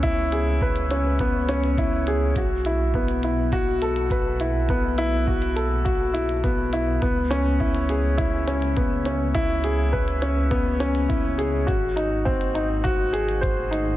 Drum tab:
HH |x-x--xx-x-xxx-x-|x-x--xx-x-xxx-x-|x-x--xx-x-xxx-x-|x-x--xx-x-xxx-x-|
BD |o---o---o---o---|o---o---o---o---|o---o---o---o---|o---o---o---o---|

HH |x-x--xx-x-xxx-x-|x-x--xx-x-xxx-x-|
BD |o---o---o---o---|o---o---o---o---|